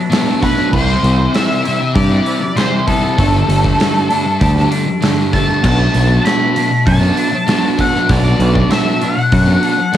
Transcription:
Already playing: D4 F#4
0.11 B2 F#3 A3 B3 D4, snare, open hi-hat
0.27 F#3 B3 D4
0.42 B2 F#3 A3 B3 D4 B4, kick, snare, open hi-hat
0.55 F#3 B3
0.72 C2 C3 E3 G3 C4 E4 C5, kick, crash
1.02 C2 C3 E3 G3 C4, open hi-hat
1.18 G3 C4 E4
1.33 C3 G3 C4 E4 E5, snare, open hi-hat
1.64 C3 G3 C4 E4, open hi-hat
1.80 muted distorted electric guitar stroke, muted overdriven electric guitar stroke
1.95 G2 G4 D5, kick, open hi-hat
2.10 G3 C4 E4
2.26 C3 G3 C4 E4, open hi-hat
2.41 muted distorted electric guitar stroke, muted overdriven electric guitar stroke
2.56 C3 E3 G3 C4 E4 C5, snare, open hi-hat
2.72 G3 C4 E4
2.87 C3 G3 B3 C4 E4 A4, kick, snare, open hi-hat
3.01 G3 C4
3.17 G1 G2 D3 G3 A3 D4 G4, kick, open hi-hat
3.47 G1 G2 D3 G3 A3, open hi-hat
3.62 D3 G3 A3 D4 G4, kick
3.78 G2 D3 G3 A3 D4 G4, snare, open hi-hat
4.09 G2 D3 G3 A3 D4 G4, open hi-hat
4.24 muted distorted electric guitar stroke, muted overdriven electric guitar stroke
4.40 D2 G4, kick, open hi-hat
4.54 D3 G3 D4 G4
4.58 A3
4.71 G3 A3 D4 G4, open hi-hat
4.86 muted distorted electric guitar stroke, muted overdriven electric guitar stroke
5.01 G2 D3 G3 A3 D4 G4, snare, open hi-hat
5.17 A3 D4 G4
5.32 G2 D3 G3 A3 D4 G4 A5, kick, snare, open hi-hat
5.46 D3 G3
5.62 B1 B2 F#3 B3 D4 F#4 A5, kick, crash
5.93 B1 B2 F#3 B3, open hi-hat
6.09 F#3 B3 D4 F#4
6.24 B2 F#3 A3 B3 D4 F#4 B5, snare, open hi-hat
6.54 B2 F#3 B3 D4 F#4, open hi-hat
6.70 muted distorted electric guitar stroke, muted overdriven electric guitar stroke
6.87 F#2 F#4 A5, kick, open hi-hat
7.01 F#3 B3 D4 F#4
7.16 F#3 B3 D4 F#4, open hi-hat
7.32 muted distorted electric guitar stroke, muted overdriven electric guitar stroke
7.47 B2 F#3 B3 D4 F#4, snare, open hi-hat
7.62 B3 D4 F#4
7.78 B2 F#3 A3 B3 D4 F#4 F#5, kick, open hi-hat
7.93 F#3 B3, snare
8.09 B1 B2 F#3 B3 D4 F#4 D5, kick, open hi-hat
8.38 B1 B2 F#3 B3, open hi-hat
8.55 F#3 B3 D4 F#4, kick
8.70 B2 F#3 A3 B3 D4 F#4 E5, snare, open hi-hat
9.00 B2 F#3 B3 D4 F#4 F#5, open hi-hat
9.17 muted distorted electric guitar stroke, muted overdriven electric guitar stroke
9.32 F#2 F#4, kick, open hi-hat
9.46 F#3 B3 D4 F#4
9.50 B3
9.63 F#3 B3 D4 F#4, open hi-hat
9.78 muted distorted electric guitar stroke, muted overdriven electric guitar stroke
9.92 B2, open hi-hat

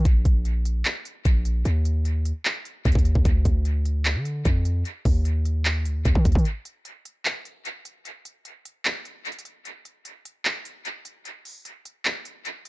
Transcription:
0.05 A#1, kick, closed hi-hat
0.25 A#1, kick, closed hi-hat
0.45 closed hi-hat
0.65 closed hi-hat
0.85 clap, closed hi-hat
1.05 closed hi-hat
1.25 A#1, kick, closed hi-hat
1.45 closed hi-hat
1.65 D#2, closed hi-hat
1.85 closed hi-hat
2.05 closed hi-hat
2.25 closed hi-hat
2.45 clap, closed hi-hat
2.65 closed hi-hat
2.85 D#2, kick, closed hi-hat
2.92 D#2, kick, closed hi-hat
2.99 closed hi-hat
3.05 closed hi-hat
3.15 D#2, kick
3.25 D2, kick, closed hi-hat
3.45 D2, kick, closed hi-hat
3.65 closed hi-hat
3.85 closed hi-hat
4.05 clap, closed hi-hat
4.15 D3
4.25 closed hi-hat
4.45 F2, kick, closed hi-hat
4.65 closed hi-hat
4.85 closed hi-hat
5.05 D#2, kick, open hi-hat
5.25 closed hi-hat
5.45 closed hi-hat
5.65 clap, closed hi-hat
5.85 D2, closed hi-hat
5.95 D#2
6.05 D#2, kick, closed hi-hat
6.15 D#3, kick
6.25 D2, kick, closed hi-hat
6.32 D#3, kick, closed hi-hat
6.39 closed hi-hat
6.45 closed hi-hat
6.65 closed hi-hat
6.85 closed hi-hat
7.05 closed hi-hat
7.25 clap, closed hi-hat
7.45 closed hi-hat
7.65 closed hi-hat
7.85 closed hi-hat
8.05 closed hi-hat
8.25 closed hi-hat
8.45 closed hi-hat
8.65 closed hi-hat
8.85 clap, closed hi-hat
9.05 closed hi-hat
9.25 closed hi-hat
9.32 closed hi-hat
9.39 closed hi-hat
9.45 closed hi-hat
9.65 closed hi-hat
9.85 closed hi-hat
10.05 closed hi-hat
10.25 closed hi-hat
10.45 clap, closed hi-hat
10.65 closed hi-hat
10.85 closed hi-hat
11.05 closed hi-hat
11.25 closed hi-hat
11.45 open hi-hat
11.65 closed hi-hat
11.85 closed hi-hat
12.05 clap, closed hi-hat
12.25 closed hi-hat
12.45 closed hi-hat
12.65 closed hi-hat

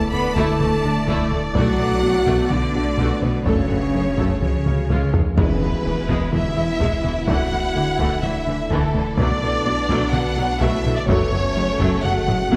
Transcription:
Already playing: D1 A3 D4 E4 A4 D5 A5
0.11 D2 D3 A3 B3 D4 B4 B5
0.35 D2 D3 A3 E4 A4 A5, taiko
0.60 D2 A3, taiko mid
0.84 D2 D3 A3 D4
1.08 D2 D3 A3 E4, taiko
1.31 D2 A3, taiko mid
1.55 B1 B2 F#3 A3 B3 F#4 B4 F#5, taiko
1.79 B1 B2 A3 B3 A4
2.03 B1 A3 B3 D4 F#4
2.27 B1 B2 A3 B3 F#4, taiko
2.50 B1 B2 D3 A3 B3 D4 D5, taiko mid
2.74 B1 A3 B3 D4 F#4
2.98 B1 B2 A3 B3 F#4, taiko
3.21 B1 B2 A3 B3 D4 B4, taiko mid
3.46 F#1 F#2 C#3 F#3 A3 C#4 G#4 A4 C#5, taiko
3.70 F#2 A3 F#4
3.94 F#2 F#3 A3 C#4 G#4
4.18 F#2 F#3 A3 A4, taiko
4.42 C#2 C#3 F3 G#3 C#4 F4 C#5, taiko mid
4.66 C#2 C#3 G#3 C#4, taiko mid
4.90 C#2 C#3 G#3 F4, taiko mid
5.14 C#2 F3 G#3, taiko low
5.37 E1 E2 E3 G#3 B3 E4 B4, taiko, impact
5.62 E1 E2 E3 G#3 E4
5.85 E1 E2 E3 G#3 B3
6.09 E1 E2 E3 G#3, taiko
6.32 E1 E2 E3 G#3 E4 E5, taiko mid
6.56 E1 E2 E3 G#3 B3
6.80 E1 E2 E3 G#3, taiko
7.03 E1 E2 E3 G#3, taiko mid
7.27 D1 D2 D3 E3 A3 D4 F#4 A4 F#5, taiko
7.52 D2 D3 E3 E4
7.75 D2 D3 E3 D4
7.99 D2 D3 E3 A3, taiko
8.22 D2 D3 E3 A3 E4 E5, taiko mid
8.47 D2 D3 E3 D4
8.70 D2 D3 E3 A3 A4, taiko
8.94 D2 D3 E3 A3, taiko mid
9.16 B1 B2 F#3 A3 B3 D4 F#4 B4 D5, taiko
9.42 B1 B2 D3 F#3 A4
9.65 B1 B2 F#3 B3 F#4
9.89 B1 B2 F#3 A3 B3, taiko
10.13 B1 B2 D3 F#3 D4 F#4 F#5, taiko mid
10.37 B1 B2 F#3 B3 F#4
10.60 B1 B2 F#3 A3 B3 E4 E5, taiko
10.84 B1 B2 D3 F#3 D4, taiko mid
10.97 D4 D5
11.07 F#1 F#2 F#3 A3 C#4 G#4 C#5, taiko
11.32 F#1 F#2 F#3 F#4
11.56 F#1 F#2 F#3 G#3 C#4
11.79 F#1 F#2 F#3 A3, taiko
12.04 F#1 F#2 F#3 A3 F#4 F#5, taiko mid
12.27 F#1 F#2 F#3 G#3 C#4, taiko low-mid
12.51 F#1 F#2 F#3 A3, taiko high

